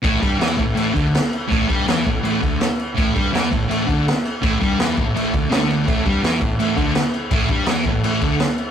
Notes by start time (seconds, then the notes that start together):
0.03 A1 A2, kick, crash
0.20 G2 G3, kick, crash
0.38 E2 E3, snare, crash
0.57 A1 A2, kick, crash
0.75 A1 A2, crash
0.94 D2 D3, kick, crash
1.15 snare, crash
1.33 crash
1.48 A1 A2, kick, crash
1.68 G2 G3, kick, crash
1.86 E2 E3, snare, crash
2.06 A1 A2, kick, crash
2.23 A1 A2, crash
2.41 D2 D3, kick, crash
2.61 snare, crash
2.79 crash
2.96 A1 A2, kick, crash
3.14 G2 G3, kick, crash
3.32 E2 E3, snare, crash
3.51 A1 A2, kick, crash
3.70 A1 A2, crash
3.87 D2 D3, kick, crash
4.08 snare, crash
4.25 crash
4.42 A1 A2, kick, crash
4.59 G2 G3, kick, crash
4.78 E2 E3, snare, crash
4.97 A1 A2, kick, crash
5.15 A1 A2, crash
5.33 D2 D3, kick, crash
5.50 D2 D3, snare, crash
5.70 crash
5.87 A1 A2, kick, crash
6.05 G2 G3, kick, crash
6.23 E2 E3, snare, crash
6.41 A1 A2, kick, crash
6.58 A1 A2, crash
6.77 D2 D3, kick, crash
6.95 snare, crash
7.14 crash
7.31 A1 A2, kick, crash
7.48 G2 G3, kick, crash
7.66 E2 E3, snare, crash
7.84 A1 A2, kick, crash
8.03 A1 A2, crash
8.21 D2 D3, kick, crash
8.40 snare, crash
8.58 crash